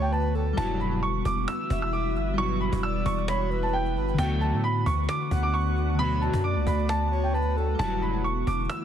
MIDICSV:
0, 0, Header, 1, 8, 480
1, 0, Start_track
1, 0, Key_signature, 2, "major"
1, 0, Tempo, 451128
1, 613, Time_signature, 4, 2, 24, 8
1, 9412, End_track
2, 0, Start_track
2, 0, Title_t, "Grand piano"
2, 0, Program_c, 0, 0
2, 21, Note_on_c, 0, 79, 73
2, 124, Note_off_c, 0, 79, 0
2, 132, Note_on_c, 0, 81, 78
2, 353, Note_off_c, 0, 81, 0
2, 610, Note_on_c, 0, 81, 112
2, 832, Note_off_c, 0, 81, 0
2, 852, Note_on_c, 0, 83, 71
2, 1073, Note_off_c, 0, 83, 0
2, 1092, Note_on_c, 0, 85, 89
2, 1313, Note_off_c, 0, 85, 0
2, 1334, Note_on_c, 0, 86, 80
2, 1554, Note_off_c, 0, 86, 0
2, 1572, Note_on_c, 0, 88, 87
2, 1917, Note_off_c, 0, 88, 0
2, 1939, Note_on_c, 0, 88, 75
2, 2043, Note_off_c, 0, 88, 0
2, 2052, Note_on_c, 0, 86, 81
2, 2273, Note_off_c, 0, 86, 0
2, 2533, Note_on_c, 0, 85, 110
2, 2754, Note_off_c, 0, 85, 0
2, 2771, Note_on_c, 0, 83, 82
2, 2993, Note_off_c, 0, 83, 0
2, 3014, Note_on_c, 0, 88, 88
2, 3234, Note_off_c, 0, 88, 0
2, 3253, Note_on_c, 0, 85, 88
2, 3474, Note_off_c, 0, 85, 0
2, 3493, Note_on_c, 0, 83, 83
2, 3838, Note_off_c, 0, 83, 0
2, 3861, Note_on_c, 0, 81, 75
2, 3965, Note_off_c, 0, 81, 0
2, 3972, Note_on_c, 0, 79, 91
2, 4193, Note_off_c, 0, 79, 0
2, 4452, Note_on_c, 0, 79, 98
2, 4674, Note_off_c, 0, 79, 0
2, 4691, Note_on_c, 0, 81, 87
2, 4913, Note_off_c, 0, 81, 0
2, 4934, Note_on_c, 0, 83, 89
2, 5154, Note_off_c, 0, 83, 0
2, 5173, Note_on_c, 0, 85, 85
2, 5394, Note_off_c, 0, 85, 0
2, 5414, Note_on_c, 0, 86, 89
2, 5758, Note_off_c, 0, 86, 0
2, 5779, Note_on_c, 0, 86, 80
2, 5883, Note_off_c, 0, 86, 0
2, 5891, Note_on_c, 0, 85, 83
2, 6113, Note_off_c, 0, 85, 0
2, 6372, Note_on_c, 0, 83, 108
2, 6593, Note_off_c, 0, 83, 0
2, 6611, Note_on_c, 0, 81, 79
2, 6833, Note_off_c, 0, 81, 0
2, 6852, Note_on_c, 0, 86, 83
2, 7073, Note_off_c, 0, 86, 0
2, 7091, Note_on_c, 0, 83, 73
2, 7313, Note_off_c, 0, 83, 0
2, 7334, Note_on_c, 0, 81, 96
2, 7678, Note_off_c, 0, 81, 0
2, 7700, Note_on_c, 0, 79, 72
2, 7804, Note_off_c, 0, 79, 0
2, 7812, Note_on_c, 0, 81, 77
2, 8033, Note_off_c, 0, 81, 0
2, 8289, Note_on_c, 0, 81, 114
2, 8512, Note_off_c, 0, 81, 0
2, 8531, Note_on_c, 0, 83, 72
2, 8753, Note_off_c, 0, 83, 0
2, 8771, Note_on_c, 0, 85, 87
2, 8993, Note_off_c, 0, 85, 0
2, 9013, Note_on_c, 0, 86, 84
2, 9234, Note_off_c, 0, 86, 0
2, 9251, Note_on_c, 0, 88, 89
2, 9412, Note_off_c, 0, 88, 0
2, 9412, End_track
3, 0, Start_track
3, 0, Title_t, "Soft synth lead"
3, 0, Program_c, 1, 80
3, 0, Note_on_c, 1, 73, 94
3, 122, Note_off_c, 1, 73, 0
3, 128, Note_on_c, 1, 71, 95
3, 358, Note_off_c, 1, 71, 0
3, 372, Note_on_c, 1, 69, 82
3, 600, Note_off_c, 1, 69, 0
3, 1814, Note_on_c, 1, 76, 91
3, 2491, Note_off_c, 1, 76, 0
3, 3013, Note_on_c, 1, 74, 86
3, 3464, Note_off_c, 1, 74, 0
3, 3489, Note_on_c, 1, 73, 90
3, 3718, Note_off_c, 1, 73, 0
3, 3729, Note_on_c, 1, 71, 95
3, 4182, Note_off_c, 1, 71, 0
3, 4208, Note_on_c, 1, 71, 92
3, 4438, Note_off_c, 1, 71, 0
3, 5651, Note_on_c, 1, 78, 82
3, 6329, Note_off_c, 1, 78, 0
3, 6854, Note_on_c, 1, 74, 91
3, 7531, Note_off_c, 1, 74, 0
3, 7574, Note_on_c, 1, 73, 91
3, 7801, Note_off_c, 1, 73, 0
3, 7808, Note_on_c, 1, 71, 93
3, 8038, Note_off_c, 1, 71, 0
3, 8051, Note_on_c, 1, 69, 84
3, 8280, Note_off_c, 1, 69, 0
3, 9412, End_track
4, 0, Start_track
4, 0, Title_t, "Synth keys"
4, 0, Program_c, 2, 88
4, 0, Control_c, 2, 64, 127
4, 0, Note_on_c, 2, 50, 64
4, 0, Note_on_c, 2, 59, 68
4, 0, Note_on_c, 2, 66, 81
4, 551, Note_off_c, 2, 50, 0
4, 565, Note_on_c, 2, 55, 74
4, 575, Note_off_c, 2, 59, 0
4, 599, Note_off_c, 2, 66, 0
4, 612, Note_on_c, 2, 64, 70
4, 629, Control_c, 2, 64, 0
4, 660, Note_on_c, 2, 66, 76
4, 829, Control_c, 2, 64, 127
4, 2470, Note_off_c, 2, 55, 0
4, 2487, Note_on_c, 2, 55, 72
4, 2494, Note_off_c, 2, 64, 0
4, 2518, Note_off_c, 2, 66, 0
4, 2535, Note_on_c, 2, 64, 59
4, 2582, Note_on_c, 2, 66, 76
4, 4391, Note_off_c, 2, 55, 0
4, 4406, Note_on_c, 2, 50, 72
4, 4415, Note_off_c, 2, 64, 0
4, 4439, Note_off_c, 2, 66, 0
4, 4453, Note_on_c, 2, 59, 66
4, 4468, Control_c, 2, 64, 0
4, 4500, Note_on_c, 2, 66, 82
4, 4633, Control_c, 2, 64, 127
4, 6310, Note_off_c, 2, 50, 0
4, 6327, Note_on_c, 2, 50, 68
4, 6334, Note_off_c, 2, 59, 0
4, 6358, Note_off_c, 2, 66, 0
4, 6375, Note_on_c, 2, 59, 66
4, 6422, Note_on_c, 2, 66, 83
4, 8231, Note_off_c, 2, 50, 0
4, 8245, Note_on_c, 2, 55, 71
4, 8255, Note_off_c, 2, 59, 0
4, 8279, Note_off_c, 2, 66, 0
4, 8292, Note_on_c, 2, 64, 71
4, 8306, Control_c, 2, 64, 0
4, 8339, Note_on_c, 2, 66, 75
4, 8509, Control_c, 2, 64, 127
4, 9412, Note_off_c, 2, 55, 0
4, 9412, Note_off_c, 2, 64, 0
4, 9412, Note_off_c, 2, 66, 0
4, 9412, End_track
5, 0, Start_track
5, 0, Title_t, "Ambient pad"
5, 0, Program_c, 3, 92
5, 0, Note_on_c, 3, 50, 83
5, 0, Note_on_c, 3, 57, 78
5, 0, Note_on_c, 3, 59, 75
5, 0, Note_on_c, 3, 66, 92
5, 570, Note_off_c, 3, 59, 0
5, 570, Note_off_c, 3, 66, 0
5, 574, Note_off_c, 3, 50, 0
5, 574, Note_off_c, 3, 57, 0
5, 612, Note_on_c, 3, 52, 86
5, 612, Note_on_c, 3, 59, 77
5, 612, Note_on_c, 3, 64, 92
5, 612, Note_on_c, 3, 66, 76
5, 4414, Note_off_c, 3, 52, 0
5, 4414, Note_off_c, 3, 59, 0
5, 4414, Note_off_c, 3, 64, 0
5, 4414, Note_off_c, 3, 66, 0
5, 4452, Note_on_c, 3, 50, 81
5, 4452, Note_on_c, 3, 57, 77
5, 4452, Note_on_c, 3, 59, 76
5, 4453, Note_on_c, 3, 66, 94
5, 8254, Note_off_c, 3, 50, 0
5, 8254, Note_off_c, 3, 57, 0
5, 8292, Note_on_c, 3, 52, 84
5, 8293, Note_on_c, 3, 64, 92
5, 9412, Note_off_c, 3, 52, 0
5, 9412, Note_off_c, 3, 59, 0
5, 9412, Note_off_c, 3, 64, 0
5, 9412, Note_off_c, 3, 66, 0
5, 9412, End_track
6, 0, Start_track
6, 0, Title_t, "Analog polysynth"
6, 0, Program_c, 4, 90
6, 612, Note_on_c, 4, 47, 98
6, 613, Note_on_c, 4, 43, 98
6, 613, Note_on_c, 4, 54, 110
6, 1068, Note_off_c, 4, 43, 0
6, 1068, Note_off_c, 4, 47, 0
6, 1069, Note_off_c, 4, 54, 0
6, 2533, Note_on_c, 4, 43, 92
6, 2533, Note_on_c, 4, 47, 91
6, 2533, Note_on_c, 4, 54, 99
6, 2988, Note_off_c, 4, 47, 0
6, 2989, Note_off_c, 4, 43, 0
6, 2989, Note_off_c, 4, 54, 0
6, 4453, Note_on_c, 4, 50, 101
6, 4453, Note_on_c, 4, 54, 96
6, 4453, Note_on_c, 4, 57, 109
6, 4908, Note_off_c, 4, 54, 0
6, 4909, Note_off_c, 4, 50, 0
6, 4909, Note_off_c, 4, 57, 0
6, 6373, Note_on_c, 4, 47, 104
6, 6373, Note_on_c, 4, 50, 97
6, 6373, Note_on_c, 4, 54, 110
6, 6829, Note_off_c, 4, 47, 0
6, 6829, Note_off_c, 4, 50, 0
6, 6829, Note_off_c, 4, 54, 0
6, 8293, Note_on_c, 4, 43, 94
6, 8293, Note_on_c, 4, 47, 96
6, 8293, Note_on_c, 4, 54, 106
6, 8749, Note_off_c, 4, 43, 0
6, 8749, Note_off_c, 4, 47, 0
6, 8749, Note_off_c, 4, 54, 0
6, 9412, End_track
7, 0, Start_track
7, 0, Title_t, "808-style bass"
7, 0, Program_c, 5, 38
7, 0, Note_on_c, 5, 38, 108
7, 570, Note_off_c, 5, 38, 0
7, 613, Note_on_c, 5, 28, 116
7, 1304, Note_off_c, 5, 28, 0
7, 1333, Note_on_c, 5, 28, 110
7, 1563, Note_off_c, 5, 28, 0
7, 1812, Note_on_c, 5, 28, 109
7, 2292, Note_on_c, 5, 31, 101
7, 2308, Note_off_c, 5, 28, 0
7, 2869, Note_off_c, 5, 31, 0
7, 2900, Note_on_c, 5, 28, 103
7, 3238, Note_off_c, 5, 28, 0
7, 3253, Note_on_c, 5, 28, 108
7, 4212, Note_on_c, 5, 31, 100
7, 4228, Note_off_c, 5, 28, 0
7, 4440, Note_off_c, 5, 31, 0
7, 4452, Note_on_c, 5, 38, 106
7, 4820, Note_on_c, 5, 45, 104
7, 4836, Note_off_c, 5, 38, 0
7, 5155, Note_off_c, 5, 45, 0
7, 5173, Note_on_c, 5, 38, 106
7, 5403, Note_off_c, 5, 38, 0
7, 5652, Note_on_c, 5, 38, 106
7, 6697, Note_off_c, 5, 38, 0
7, 6740, Note_on_c, 5, 42, 109
7, 6979, Note_on_c, 5, 37, 98
7, 6995, Note_off_c, 5, 42, 0
7, 7087, Note_off_c, 5, 37, 0
7, 7093, Note_on_c, 5, 38, 107
7, 8250, Note_off_c, 5, 38, 0
7, 8293, Note_on_c, 5, 28, 120
7, 8984, Note_off_c, 5, 28, 0
7, 9013, Note_on_c, 5, 28, 103
7, 9243, Note_off_c, 5, 28, 0
7, 9412, End_track
8, 0, Start_track
8, 0, Title_t, "Cajon"
8, 132, Note_on_c, 9, 38, 44
8, 212, Note_off_c, 9, 38, 0
8, 212, Note_on_c, 9, 38, 33
8, 292, Note_off_c, 9, 38, 0
8, 292, Note_on_c, 9, 38, 24
8, 371, Note_off_c, 9, 38, 0
8, 371, Note_on_c, 9, 38, 45
8, 477, Note_off_c, 9, 38, 0
8, 613, Note_on_c, 9, 36, 122
8, 719, Note_off_c, 9, 36, 0
8, 851, Note_on_c, 9, 38, 44
8, 957, Note_off_c, 9, 38, 0
8, 1095, Note_on_c, 9, 38, 47
8, 1202, Note_off_c, 9, 38, 0
8, 1333, Note_on_c, 9, 36, 88
8, 1396, Note_on_c, 9, 38, 34
8, 1440, Note_off_c, 9, 36, 0
8, 1460, Note_off_c, 9, 38, 0
8, 1460, Note_on_c, 9, 38, 30
8, 1516, Note_off_c, 9, 38, 0
8, 1516, Note_on_c, 9, 38, 25
8, 1572, Note_off_c, 9, 38, 0
8, 1572, Note_on_c, 9, 38, 121
8, 1679, Note_off_c, 9, 38, 0
8, 1812, Note_on_c, 9, 36, 95
8, 1919, Note_off_c, 9, 36, 0
8, 2052, Note_on_c, 9, 38, 42
8, 2159, Note_off_c, 9, 38, 0
8, 2180, Note_on_c, 9, 38, 30
8, 2236, Note_off_c, 9, 38, 0
8, 2236, Note_on_c, 9, 38, 24
8, 2291, Note_off_c, 9, 38, 0
8, 2291, Note_on_c, 9, 38, 49
8, 2398, Note_off_c, 9, 38, 0
8, 2533, Note_on_c, 9, 38, 39
8, 2639, Note_off_c, 9, 38, 0
8, 2773, Note_on_c, 9, 38, 38
8, 2879, Note_off_c, 9, 38, 0
8, 2900, Note_on_c, 9, 36, 97
8, 3007, Note_off_c, 9, 36, 0
8, 3253, Note_on_c, 9, 36, 92
8, 3360, Note_off_c, 9, 36, 0
8, 3492, Note_on_c, 9, 38, 124
8, 3598, Note_off_c, 9, 38, 0
8, 3732, Note_on_c, 9, 38, 31
8, 3796, Note_off_c, 9, 38, 0
8, 3796, Note_on_c, 9, 38, 33
8, 3859, Note_off_c, 9, 38, 0
8, 3859, Note_on_c, 9, 38, 33
8, 3916, Note_off_c, 9, 38, 0
8, 3916, Note_on_c, 9, 38, 31
8, 3972, Note_off_c, 9, 38, 0
8, 3972, Note_on_c, 9, 38, 25
8, 4079, Note_off_c, 9, 38, 0
8, 4099, Note_on_c, 9, 38, 43
8, 4206, Note_off_c, 9, 38, 0
8, 4212, Note_on_c, 9, 38, 28
8, 4319, Note_off_c, 9, 38, 0
8, 4339, Note_on_c, 9, 38, 46
8, 4446, Note_off_c, 9, 38, 0
8, 4453, Note_on_c, 9, 36, 126
8, 4559, Note_off_c, 9, 36, 0
8, 4691, Note_on_c, 9, 38, 43
8, 4797, Note_off_c, 9, 38, 0
8, 4935, Note_on_c, 9, 38, 48
8, 5041, Note_off_c, 9, 38, 0
8, 5173, Note_on_c, 9, 36, 92
8, 5280, Note_off_c, 9, 36, 0
8, 5300, Note_on_c, 9, 38, 30
8, 5356, Note_off_c, 9, 38, 0
8, 5356, Note_on_c, 9, 38, 24
8, 5412, Note_off_c, 9, 38, 0
8, 5412, Note_on_c, 9, 38, 126
8, 5519, Note_off_c, 9, 38, 0
8, 5652, Note_on_c, 9, 36, 95
8, 5759, Note_off_c, 9, 36, 0
8, 5893, Note_on_c, 9, 38, 44
8, 5956, Note_off_c, 9, 38, 0
8, 5956, Note_on_c, 9, 38, 36
8, 6020, Note_off_c, 9, 38, 0
8, 6020, Note_on_c, 9, 38, 32
8, 6076, Note_off_c, 9, 38, 0
8, 6076, Note_on_c, 9, 38, 24
8, 6131, Note_off_c, 9, 38, 0
8, 6131, Note_on_c, 9, 38, 51
8, 6237, Note_off_c, 9, 38, 0
8, 6373, Note_on_c, 9, 38, 39
8, 6479, Note_off_c, 9, 38, 0
8, 6611, Note_on_c, 9, 38, 45
8, 6717, Note_off_c, 9, 38, 0
8, 6740, Note_on_c, 9, 36, 97
8, 6847, Note_off_c, 9, 36, 0
8, 7093, Note_on_c, 9, 36, 90
8, 7200, Note_off_c, 9, 36, 0
8, 7220, Note_on_c, 9, 38, 43
8, 7326, Note_off_c, 9, 38, 0
8, 7332, Note_on_c, 9, 38, 122
8, 7438, Note_off_c, 9, 38, 0
8, 7574, Note_on_c, 9, 38, 37
8, 7681, Note_off_c, 9, 38, 0
8, 7812, Note_on_c, 9, 38, 43
8, 7892, Note_off_c, 9, 38, 0
8, 7892, Note_on_c, 9, 38, 34
8, 7972, Note_off_c, 9, 38, 0
8, 7972, Note_on_c, 9, 38, 25
8, 8051, Note_off_c, 9, 38, 0
8, 8051, Note_on_c, 9, 38, 48
8, 8157, Note_off_c, 9, 38, 0
8, 8292, Note_on_c, 9, 36, 119
8, 8399, Note_off_c, 9, 36, 0
8, 8531, Note_on_c, 9, 38, 44
8, 8637, Note_off_c, 9, 38, 0
8, 8775, Note_on_c, 9, 38, 46
8, 8882, Note_off_c, 9, 38, 0
8, 9013, Note_on_c, 9, 36, 85
8, 9076, Note_on_c, 9, 38, 35
8, 9119, Note_off_c, 9, 36, 0
8, 9139, Note_off_c, 9, 38, 0
8, 9139, Note_on_c, 9, 38, 30
8, 9196, Note_off_c, 9, 38, 0
8, 9196, Note_on_c, 9, 38, 24
8, 9252, Note_off_c, 9, 38, 0
8, 9252, Note_on_c, 9, 38, 123
8, 9358, Note_off_c, 9, 38, 0
8, 9412, End_track
0, 0, End_of_file